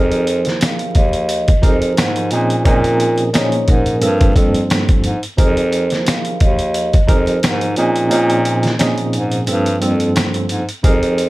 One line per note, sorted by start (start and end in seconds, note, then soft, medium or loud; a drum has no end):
0.00 0.51 F2 loud
0.00 1.50 F3 loud
0.00 1.51 D#4 medium
0.00 1.51 G4 medium
0.00 1.51 G#4 medium
0.00 1.51 A#4 loud
0.00 0.24 C5 loud
0.12 closed hi-hat medium
0.27 0.58 C5 medium
0.27 closed hi-hat medium
0.45 snare soft
0.45 closed hi-hat soft
0.61 0.92 F5 medium
0.61 snare loud
0.61 snare medium
0.61 closed hi-hat loud
0.79 closed hi-hat soft
0.95 1.54 D#2 loud
0.95 1.60 D#5 medium
0.95 kick medium
0.95 closed hi-hat medium
1.13 closed hi-hat medium
1.29 closed hi-hat medium
1.48 kick loud
1.48 closed hi-hat medium
1.62 1.92 F2 medium
1.62 2.31 F3 medium
1.62 2.31 D#4 medium
1.62 2.31 G4 medium
1.62 2.31 G#4 medium
1.62 2.32 A#4 loud
1.62 1.94 C5 medium
1.62 kick medium
1.62 closed hi-hat medium
1.82 closed hi-hat medium
1.97 2.27 G#2 loud
1.97 snare loud
1.97 snare medium
1.97 closed hi-hat loud
2.16 closed hi-hat medium
2.31 2.63 A#2 loud
2.31 2.61 A#2 loud
2.31 2.63 F3 medium
2.31 2.63 C4 medium
2.31 2.64 C#4 medium
2.31 2.64 D#4 medium
2.31 2.64 G#4 loud
2.31 closed hi-hat medium
2.50 closed hi-hat medium
2.64 3.28 A#2 loud
2.64 3.24 A#2 loud
2.64 3.28 F3 medium
2.64 3.28 C4 medium
2.64 3.29 C#4 medium
2.64 3.29 D#4 medium
2.64 3.29 G#4 loud
2.64 2.96 A#4 loud
2.64 kick loud
2.64 closed hi-hat medium
2.84 closed hi-hat medium
3.00 closed hi-hat medium
3.18 closed hi-hat soft
3.33 4.01 A#2 medium
3.33 4.00 F3 medium
3.33 4.01 A#3 medium
3.33 4.02 C#4 medium
3.33 4.02 D#4 medium
3.33 4.02 G#4 loud
3.33 3.64 C#5 medium
3.33 snare loud
3.33 snare medium
3.33 closed hi-hat loud
3.52 closed hi-hat soft
3.68 3.97 G#2 medium
3.68 4.18 A#4 medium
3.68 kick medium
3.68 closed hi-hat medium
3.86 closed hi-hat medium
4.01 4.33 G2 medium
4.01 4.31 G2 loud
4.01 4.33 F3 medium
4.01 4.34 A#3 medium
4.01 4.34 C4 medium
4.01 4.34 A4 loud
4.01 closed hi-hat medium
4.21 kick loud
4.21 closed hi-hat medium
4.35 4.65 F2 loud
4.35 5.15 G2 medium
4.35 5.15 F3 medium
4.35 5.15 A#3 medium
4.35 5.16 C4 medium
4.35 5.16 A4 loud
4.35 kick medium
4.35 closed hi-hat medium
4.55 closed hi-hat medium
4.70 snare loud
4.70 snare medium
4.70 closed hi-hat loud
4.89 kick medium
4.89 closed hi-hat medium
5.04 5.20 G#2 medium
5.04 closed hi-hat medium
5.23 closed hi-hat medium
5.37 5.97 F2 loud
5.37 6.96 F3 loud
5.37 6.96 D#4 medium
5.37 6.96 G4 medium
5.37 6.97 G#4 medium
5.37 6.97 A#4 loud
5.37 5.69 C5 loud
5.37 kick loud
5.37 closed hi-hat loud
5.57 closed hi-hat medium
5.72 6.03 C5 medium
5.72 closed hi-hat medium
5.90 snare soft
5.90 closed hi-hat soft
6.07 6.37 F5 medium
6.07 snare loud
6.07 snare medium
6.07 closed hi-hat loud
6.25 closed hi-hat soft
6.40 6.99 D#2 loud
6.40 7.05 D#5 medium
6.40 kick medium
6.40 closed hi-hat medium
6.59 closed hi-hat medium
6.74 closed hi-hat medium
6.93 kick loud
6.93 closed hi-hat medium
7.07 7.38 F2 loud
7.07 7.76 F3 medium
7.07 7.76 D#4 medium
7.07 7.77 G4 medium
7.07 7.77 G#4 medium
7.07 7.77 A#4 loud
7.07 7.39 C5 medium
7.07 kick loud
7.07 closed hi-hat medium
7.27 closed hi-hat medium
7.43 7.72 G#2 loud
7.43 snare loud
7.43 snare medium
7.43 closed hi-hat loud
7.61 closed hi-hat medium
7.76 8.08 A#2 loud
7.76 8.06 A#2 loud
7.76 8.09 F3 medium
7.76 8.09 C4 medium
7.76 8.09 C#4 medium
7.76 8.09 D#4 medium
7.76 8.10 G#4 loud
7.76 closed hi-hat medium
7.96 closed hi-hat medium
8.09 8.73 A#2 loud
8.09 8.70 A#2 loud
8.09 8.74 F3 medium
8.09 8.74 C4 medium
8.09 8.74 C#4 medium
8.09 8.74 D#4 medium
8.09 8.74 G#4 loud
8.09 closed hi-hat loud
8.30 closed hi-hat medium
8.45 closed hi-hat medium
8.63 snare soft
8.63 closed hi-hat soft
8.78 9.47 A#2 medium
8.78 9.46 F3 medium
8.78 9.47 C4 medium
8.78 9.48 C#4 medium
8.78 9.48 D#4 medium
8.78 9.48 G#4 loud
8.78 snare loud
8.78 snare medium
8.78 closed hi-hat loud
8.98 closed hi-hat soft
9.13 9.43 G#2 medium
9.13 closed hi-hat medium
9.32 closed hi-hat medium
9.47 9.79 G2 loud
9.47 9.77 G2 loud
9.47 9.79 F3 medium
9.47 9.79 A#3 medium
9.47 9.79 C4 medium
9.47 9.80 A4 loud
9.47 closed hi-hat medium
9.66 closed hi-hat medium
9.81 10.11 F2 loud
9.81 10.60 G2 medium
9.81 10.61 F3 medium
9.81 10.61 A#3 medium
9.81 10.61 C4 medium
9.81 10.61 A4 loud
9.81 closed hi-hat medium
10.00 closed hi-hat medium
10.16 snare loud
10.16 snare medium
10.16 closed hi-hat loud
10.34 closed hi-hat medium
10.49 10.66 G#2 medium
10.49 closed hi-hat medium
10.69 closed hi-hat medium
10.83 11.29 F2 loud
10.83 11.29 F3 medium
10.83 11.29 D#4 medium
10.83 11.29 G4 medium
10.83 11.29 G#4 medium
10.83 11.29 A#4 loud
10.83 11.14 C5 loud
10.83 kick loud
10.83 closed hi-hat medium
11.03 closed hi-hat medium
11.18 11.29 C5 medium
11.18 closed hi-hat medium